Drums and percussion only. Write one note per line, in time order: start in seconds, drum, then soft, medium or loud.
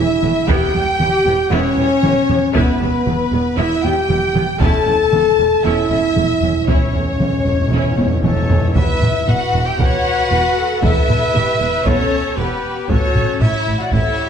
0.23 taiko mid medium
0.48 taiko medium
1.00 taiko mid medium
2.03 taiko mid medium
2.29 taiko mid medium
2.55 taiko medium
3.07 taiko mid medium
4.10 taiko mid medium
4.36 taiko mid medium
4.61 taiko loud
5.13 taiko mid medium
6.16 taiko mid medium
6.43 taiko mid medium
6.69 taiko loud
7.20 taiko mid medium
7.98 taiko high medium
8.24 taiko mid medium
8.50 taiko low loud
8.76 taiko loud
9.02 taiko low-mid medium
9.29 taiko low-mid medium
9.80 taiko medium
10.83 taiko medium
11.10 taiko low-mid medium
11.36 taiko low-mid medium
11.87 taiko medium
12.90 taiko medium
13.15 taiko low-mid medium
13.41 taiko low-mid medium
13.93 taiko medium